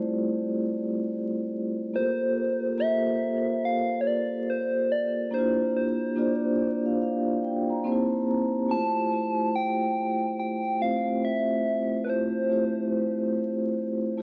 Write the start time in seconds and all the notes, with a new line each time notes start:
Already playing: G3 A3 E4 F4 G4 C5 D5
1.94 A#3 F4 G4 A4 A#4 C5
2.03 C5
2.78 A#3 F4 G4 A4 A#4 E5
2.87 C5
3.65 F5
4.01 C#5
4.07 D5
4.50 C5
4.92 D5
5.31 A#3 D4 E4 G4 C5
5.39 F4
5.76 C5
6.16 A#3 D4 F4 G4 D5
6.59 D5
6.86 F5
7.02 F5
7.43 G5
7.70 A#5
7.84 A#3 C4 D#4 G4 C5 A5
7.92 E4
8.28 A#5
8.68 A3 E4 F4 G4 C5 A5
9.11 A3 E4 F4 G4 C5
9.56 G5
10.40 G5
10.80 A3 C4 F4 G4 C5 F5
11.25 E5
12.04 A3 E4 F4 B4
12.09 G4 C5
12.49 A3 E4 F4 G4 C5
14.17 A3 E4 F4